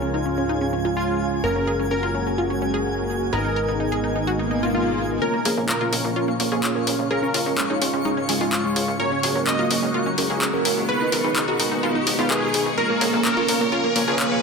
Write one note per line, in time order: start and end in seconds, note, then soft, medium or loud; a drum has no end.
0.00 1.41 C#2 medium
0.00 1.42 G#2 medium
0.00 3.29 C#3 medium
0.00 1.40 F3 medium
0.00 1.41 G#3 medium
0.00 1.40 C#4 medium
0.00 1.41 C#4 medium
0.00 0.08 C#4 medium
0.00 1.41 F4 medium
0.00 1.42 F4 medium
0.00 1.41 G#4 medium
0.00 0.16 A#4 loud
0.00 1.41 C#5 medium
0.00 5.23 G#5 medium
0.14 0.20 D#4 medium
0.26 0.32 C#4 medium
0.38 0.44 C#4 medium
0.49 0.55 D#4 medium
0.61 0.67 C#4 medium
0.73 0.79 C#4 medium
0.85 1.34 F4 medium
0.97 1.39 F4 medium
1.44 3.30 F#1 medium
1.44 3.31 F#3 medium
1.44 5.18 G#3 medium
1.44 3.30 A#3 medium
1.44 3.30 C#4 medium
1.44 3.31 F#4 loud
1.44 3.30 F#4 medium
1.44 3.30 G#4 medium
1.44 1.50 A#4 loud
1.44 1.86 A#4 loud
1.44 3.30 A#4 medium
1.56 1.62 C#4 medium
1.67 1.73 G#4 loud
1.79 1.85 C#4 medium
1.91 1.97 C#4 medium
1.91 2.53 A#4 loud
2.03 2.09 F4 medium
2.15 2.21 C#4 medium
2.27 2.32 C#4 medium
2.38 2.44 F4 medium
2.50 2.56 C#4 medium
2.62 2.68 C#4 medium
2.74 3.23 G#4 medium
3.33 5.19 G#1 medium
3.33 5.20 B2 medium
3.33 5.20 D#3 medium
3.33 5.19 B3 medium
3.33 5.20 D#4 medium
3.33 5.19 D#4 medium
3.33 5.19 G#4 medium
3.33 3.94 A#4 loud
3.33 5.19 A#4 medium
3.33 3.39 B4 loud
3.33 5.19 D#5 medium
3.45 3.51 D#4 medium
3.56 3.62 A#4 medium
3.68 3.74 D#4 medium
3.80 3.86 D#4 medium
3.92 3.98 G#4 medium
4.04 4.10 D#4 medium
4.16 4.21 D#4 medium
4.27 4.33 F#4 medium
4.27 swell medium
4.39 4.45 D#4 medium
4.51 4.57 D#4 medium
4.63 5.12 F4 medium
4.75 5.17 F4 medium
5.22 7.09 A#2 medium
5.22 10.85 C#3 medium
5.22 8.96 F3 medium
5.22 5.35 A#3 medium
5.22 5.35 C#4 medium
5.22 8.96 C#4 medium
5.22 5.35 F4 medium
5.22 8.96 F4 loud
5.22 5.64 A#4 loud
5.22 5.35 A#4 medium
5.22 5.28 A#4 medium
5.22 5.35 C#5 medium
5.22 14.42 C#6 medium
5.22 riser medium
5.34 5.40 A#3 medium
5.45 5.55 A#1 medium
5.45 5.56 A#3 medium
5.45 5.56 C#4 medium
5.45 5.56 F4 medium
5.45 5.51 G#4 medium
5.45 5.56 A#4 medium
5.45 5.56 C#5 medium
5.45 open hi-hat medium
5.57 5.67 A#1 medium
5.57 5.63 A#3 medium
5.57 5.77 A#3 medium
5.57 5.77 C#4 medium
5.57 5.77 F4 medium
5.57 5.77 A#4 medium
5.57 5.77 C#5 loud
5.69 5.75 A#3 medium
5.69 6.31 A#4 loud
5.69 clap loud
5.81 5.91 A#3 medium
5.81 5.91 C#4 medium
5.81 5.87 F4 medium
5.81 5.91 F4 medium
5.81 5.91 A#4 medium
5.81 5.91 C#5 loud
5.93 6.02 A#1 medium
5.93 5.99 A#3 medium
5.93 6.13 A#3 medium
5.93 6.13 C#4 medium
5.93 6.13 F4 medium
5.93 6.13 A#4 medium
5.93 6.13 C#5 medium
5.93 open hi-hat loud
6.04 6.14 A#1 medium
6.04 6.10 A#3 medium
6.16 6.30 A#3 medium
6.16 6.30 C#4 medium
6.16 6.22 F4 medium
6.16 6.30 F4 medium
6.16 6.30 A#4 medium
6.16 6.30 C#5 medium
6.28 6.34 A#3 medium
6.40 6.50 A#1 medium
6.40 6.46 A#3 medium
6.40 6.49 A#3 medium
6.40 6.49 C#4 medium
6.40 6.49 F4 medium
6.40 6.49 A#4 medium
6.40 6.49 C#5 medium
6.40 open hi-hat loud
6.52 6.61 F2 medium
6.52 6.72 A#3 medium
6.52 6.72 C#4 medium
6.52 6.72 F4 medium
6.52 7.01 G#4 medium
6.52 6.72 A#4 medium
6.52 6.72 C#5 loud
6.64 clap loud
6.75 6.85 A#3 loud
6.75 6.85 C#4 medium
6.75 6.85 F4 medium
6.75 6.85 A#4 medium
6.75 6.85 C#5 loud
6.87 6.97 A#1 loud
6.87 7.07 A#3 loud
6.87 7.07 C#4 medium
6.87 7.07 F4 medium
6.87 7.07 A#4 medium
6.87 7.07 C#5 loud
6.87 open hi-hat loud
6.99 7.08 A#1 medium
7.11 8.98 G#2 medium
7.11 7.24 G#3 medium
7.11 7.24 C#4 medium
7.11 7.24 F4 medium
7.11 7.17 G#4 loud
7.11 7.24 G#4 medium
7.11 7.72 A#4 loud
7.11 7.24 C#5 medium
7.23 7.28 C#4 medium
7.34 7.44 C#2 medium
7.34 7.45 G#3 medium
7.34 7.45 C#4 medium
7.34 7.40 F4 medium
7.34 7.45 F4 medium
7.34 7.45 G#4 medium
7.34 7.45 C#5 medium
7.34 open hi-hat loud
7.46 7.56 C#2 medium
7.46 7.66 G#3 medium
7.46 7.52 C#4 medium
7.46 7.66 C#4 medium
7.46 7.66 F4 medium
7.46 7.66 G#4 medium
7.46 7.66 C#5 loud
7.58 7.64 C#4 medium
7.58 clap loud
7.70 7.80 G#3 medium
7.70 7.80 C#4 medium
7.70 7.76 D#4 medium
7.70 7.80 F4 medium
7.70 7.80 G#4 medium
7.70 7.80 C#5 loud
7.81 7.91 C#2 medium
7.81 8.02 G#3 medium
7.81 8.02 C#4 medium
7.81 7.88 C#4 medium
7.81 8.02 F4 medium
7.81 8.02 G#4 medium
7.81 8.02 C#5 medium
7.81 open hi-hat loud
7.94 8.03 C#2 medium
7.94 7.99 C#4 medium
8.05 8.19 G#3 medium
8.05 8.19 C#4 medium
8.05 8.11 D#4 medium
8.05 8.19 F4 medium
8.05 8.19 G#4 medium
8.05 8.19 C#5 medium
8.17 8.23 C#4 medium
8.29 8.39 G#1 medium
8.29 8.38 G#3 medium
8.29 8.38 C#4 medium
8.29 8.35 C#4 medium
8.29 8.38 F4 medium
8.29 8.38 G#4 medium
8.29 8.38 C#5 loud
8.29 open hi-hat loud
8.41 8.50 G#1 medium
8.41 8.61 G#3 loud
8.41 8.61 C#4 medium
8.41 8.90 F4 loud
8.41 8.61 F4 medium
8.41 8.61 G#4 medium
8.41 8.61 C#5 loud
8.52 8.95 F4 medium
8.52 clap loud
8.64 8.74 G#3 medium
8.64 8.74 C#4 medium
8.64 8.74 F4 medium
8.64 8.74 G#4 medium
8.64 8.74 C#5 loud
8.76 8.86 C#2 loud
8.76 8.96 G#3 medium
8.76 8.96 C#4 medium
8.76 8.96 F4 medium
8.76 8.96 G#4 medium
8.76 8.96 C#5 loud
8.76 open hi-hat loud
8.88 8.97 C#2 medium
9.00 10.87 F#3 medium
9.00 12.74 G#3 medium
9.00 10.87 A#3 medium
9.00 9.13 A#3 medium
9.00 9.13 C#4 medium
9.00 10.87 F#4 medium
9.00 9.13 F#4 medium
9.00 9.13 G#4 medium
9.00 9.06 A#4 loud
9.00 9.13 A#4 medium
9.00 9.42 C#5 loud
9.12 9.18 C#4 medium
9.23 9.33 F#1 medium
9.23 9.34 A#3 medium
9.23 9.34 C#4 medium
9.23 9.34 F#4 medium
9.23 9.29 G#4 medium
9.23 9.34 G#4 medium
9.23 9.34 A#4 medium
9.23 open hi-hat loud
9.35 9.45 F#1 medium
9.35 9.55 A#3 medium
9.35 9.41 C#4 medium
9.35 9.55 C#4 medium
9.35 9.55 F#4 medium
9.35 9.55 G#4 medium
9.35 9.55 A#4 medium
9.47 9.53 C#4 medium
9.47 10.08 D#5 loud
9.47 clap loud
9.59 9.69 A#3 medium
9.59 9.69 C#4 medium
9.59 9.65 F4 medium
9.59 9.69 F#4 medium
9.59 9.69 G#4 medium
9.59 9.69 A#4 loud
9.71 9.80 F#1 loud
9.71 9.91 A#3 medium
9.71 9.77 C#4 medium
9.71 9.91 C#4 medium
9.71 9.91 F#4 medium
9.71 9.91 G#4 medium
9.71 9.91 A#4 medium
9.71 open hi-hat loud
9.83 9.92 F#1 medium
9.83 9.88 C#4 medium
9.94 10.08 A#3 medium
9.94 10.08 C#4 medium
9.94 10.00 F4 medium
9.94 10.08 F#4 medium
9.94 10.08 G#4 medium
9.94 10.08 A#4 medium
10.06 10.12 C#4 medium
10.18 10.28 F#1 medium
10.18 10.27 A#3 medium
10.18 10.24 C#4 medium
10.18 10.27 C#4 medium
10.18 10.27 F#4 medium
10.18 10.27 G#4 medium
10.18 10.27 A#4 medium
10.18 open hi-hat loud
10.30 10.39 C#2 medium
10.30 10.50 A#3 medium
10.30 10.50 C#4 medium
10.30 10.50 F#4 medium
10.30 10.79 G#4 medium
10.30 10.50 G#4 medium
10.30 10.50 A#4 loud
10.42 clap loud
10.53 10.63 A#3 medium
10.53 10.63 C#4 medium
10.53 10.63 F#4 medium
10.53 10.63 G#4 medium
10.53 10.63 A#4 loud
10.65 10.75 F#1 loud
10.65 10.85 A#3 loud
10.65 10.85 C#4 medium
10.65 10.85 F#4 medium
10.65 10.85 G#4 medium
10.65 10.85 A#4 loud
10.65 open hi-hat loud
10.77 10.86 F#1 medium
10.89 14.42 B2 medium
10.89 12.76 D#3 medium
10.89 11.02 B3 medium
10.89 12.76 B3 medium
10.89 11.02 D#4 medium
10.89 12.76 D#4 medium
10.89 11.02 G#4 medium
10.89 11.02 A#4 medium
10.89 11.50 B4 loud
10.89 10.95 B4 loud
10.89 11.02 B4 medium
11.01 11.07 D#4 medium
11.12 11.22 G#1 medium
11.12 11.22 B3 medium
11.12 11.22 D#4 medium
11.12 11.22 G#4 medium
11.12 11.18 A#4 medium
11.12 11.22 A#4 medium
11.12 11.22 B4 medium
11.12 open hi-hat loud
11.24 11.34 G#1 medium
11.24 11.44 B3 medium
11.24 11.44 D#4 medium
11.24 11.30 D#4 medium
11.24 11.44 G#4 medium
11.24 11.44 A#4 medium
11.24 11.44 B4 loud
11.36 11.42 D#4 medium
11.36 clap loud
11.48 11.58 B3 medium
11.48 11.58 D#4 medium
11.48 11.54 F#4 medium
11.48 11.58 G#4 medium
11.48 11.58 A#4 medium
11.48 11.58 B4 loud
11.59 11.69 G#1 medium
11.59 11.80 B3 medium
11.59 11.66 D#4 medium
11.59 11.80 D#4 medium
11.59 11.80 G#4 medium
11.59 11.80 A#4 medium
11.59 11.80 B4 medium
11.59 open hi-hat loud
11.72 11.81 G#1 medium
11.72 11.77 D#4 medium
11.83 11.97 B3 medium
11.83 11.97 D#4 medium
11.83 11.89 F4 medium
11.83 11.97 G#4 medium
11.83 11.97 A#4 medium
11.83 11.97 B4 medium
11.95 12.01 D#4 medium
12.07 12.17 G#1 medium
12.07 12.13 D#4 medium
12.07 open hi-hat loud
12.19 12.28 G#1 medium
12.19 12.29 B3 medium
12.19 12.29 D#4 medium
12.19 12.68 F4 loud
12.19 12.29 G#4 medium
12.19 12.29 A#4 medium
12.19 12.29 B4 medium
12.30 12.39 B3 loud
12.30 12.39 D#4 medium
12.30 12.73 G#4 loud
12.30 12.39 G#4 medium
12.30 12.39 A#4 medium
12.30 12.39 B4 loud
12.30 clap loud
12.42 12.52 B3 medium
12.42 12.52 D#4 medium
12.42 12.52 G#4 medium
12.42 12.52 B4 medium
12.54 12.64 G#1 loud
12.54 12.67 B3 medium
12.54 12.67 D#4 medium
12.54 12.67 G#4 medium
12.54 12.67 A#4 medium
12.54 12.67 B4 medium
12.54 open hi-hat loud
12.66 12.75 G#1 medium
12.78 14.42 C#3 medium
12.78 14.42 F3 medium
12.78 12.91 A#3 medium
12.78 12.91 C#4 medium
12.78 14.42 C#4 medium
12.78 12.91 F4 medium
12.78 14.42 F4 loud
12.78 12.91 A#4 medium
12.78 13.20 A#4 loud
12.78 12.84 A#4 loud
12.78 12.91 C#5 medium
12.90 12.95 A#3 medium
13.01 13.11 A#1 medium
13.01 13.11 A#3 medium
13.01 13.11 C#4 medium
13.01 13.11 F4 medium
13.01 13.07 G#4 medium
13.01 13.11 A#4 medium
13.01 13.11 C#5 medium
13.01 open hi-hat loud
13.13 13.23 A#1 medium
13.13 13.19 A#3 medium
13.13 13.33 A#3 medium
13.13 13.33 C#4 medium
13.13 13.33 F4 medium
13.13 13.33 A#4 medium
13.13 13.33 C#5 medium
13.25 13.31 A#3 medium
13.25 13.86 A#4 loud
13.25 clap loud
13.37 13.47 A#3 medium
13.37 13.47 C#4 medium
13.37 13.43 F4 medium
13.37 13.47 F4 medium
13.37 13.47 A#4 medium
13.37 13.47 C#5 loud
13.48 13.58 A#1 loud
13.48 13.54 A#3 medium
13.48 13.69 A#3 medium
13.48 13.69 C#4 medium
13.48 13.69 F4 medium
13.48 13.69 A#4 medium
13.48 13.69 C#5 medium
13.48 open hi-hat loud
13.60 13.70 A#1 medium
13.60 13.66 A#3 medium
13.72 13.86 A#3 medium
13.72 13.86 C#4 medium
13.72 13.78 F4 medium
13.72 13.86 F4 medium
13.72 13.86 A#4 medium
13.72 13.86 C#5 loud
13.84 13.90 A#3 medium
13.96 14.06 A#1 medium
13.96 14.02 A#3 medium
13.96 14.05 A#3 medium
13.96 14.05 C#4 medium
13.96 14.05 F4 medium
13.96 14.05 A#4 medium
13.96 14.05 C#5 loud
13.96 open hi-hat loud
14.08 14.17 F2 medium
14.08 14.28 A#3 medium
14.08 14.28 C#4 medium
14.08 14.28 F4 medium
14.08 14.42 G#4 medium
14.08 14.28 A#4 medium
14.08 14.28 C#5 loud
14.19 clap loud
14.31 14.41 A#3 medium
14.31 14.41 C#4 medium
14.31 14.41 F4 medium
14.31 14.41 A#4 medium
14.31 14.41 C#5 loud